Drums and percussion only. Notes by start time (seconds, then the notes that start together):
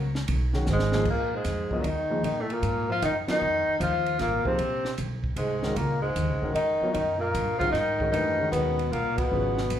0.15 snare
0.28 ride
0.54 snare
0.67 snare, hi-hat pedal
0.79 snare
0.92 snare
1.05 kick, crash
1.44 snare, hi-hat pedal, ride
1.71 kick
1.84 ride
2.24 ride
2.50 ride
2.63 hi-hat pedal, ride
3.02 hi-hat pedal, ride
3.28 snare, ride
3.81 hi-hat pedal, ride
4.06 ride
4.19 snare, ride
4.45 kick
4.59 ride
4.85 snare
4.98 hi-hat pedal, ride
5.24 kick
5.36 ride
5.63 snare
5.76 ride
6.16 hi-hat pedal, ride
6.55 ride
6.94 ride
7.35 hi-hat pedal, ride
7.61 kick, ride
7.75 snare, ride
8.00 kick
8.14 ride
8.53 hi-hat pedal, ride
8.79 ride
8.93 ride
9.18 kick, ride
9.58 snare
9.70 hi-hat pedal, ride